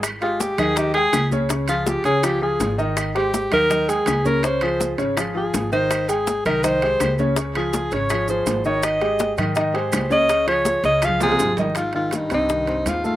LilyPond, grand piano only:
\new Staff \with { instrumentName = "Grand piano" } { \time 4/4 \key aes \major \tempo 4 = 164 r8 <aes g' aes'>4 <ees ees' ees''>8 <ees ees' ees''>8 <aes aes' g''>4 <des des' des''>8 | <des des' des''>8 <f f' aes'>4 <des des' des''>8 <f f' aes'>8 <f f' aes'>4 <ees ees' ees''>8~ | <ees ees' ees''>8 <aes g' c''>4 <ees ees' ees''>8 <ees ees' ees''>8 <aes aes' g''>4 <des des' des''>8 | <des des' des''>8 <f f' aes'>4 <des des' des''>8 <f f' aes'>8 <f f' aes'>4 <ees ees' ees''>8~ |
<ees ees' ees''>8 <aes aes' g''>4 <ees ees' ees''>8 <ees ees' ees''>8 <aes g' aes'>4 <des des' des''>8 | <des des' des''>8 <f f' aes'>4 <des des' des''>8 <f f' aes'>8 <f f' aes'>4 <ees ees' ees''>8~ | <ees ees' ees''>8 <aes g' aes'>4 <ees ees' ees''>8 <ees ees' ees''>8 <aes g' aes'>4 <des des' des''>8 | <des des' des''>8 <f f' aes'>4 <des des' des''>8 <f f' aes'>8 <f f' aes'>4 <ees ees' ees''>8 |
r8 <ees ees'>4 <c c'>8 <ees ees'>8 <c' c''>4 <a a'>8 | }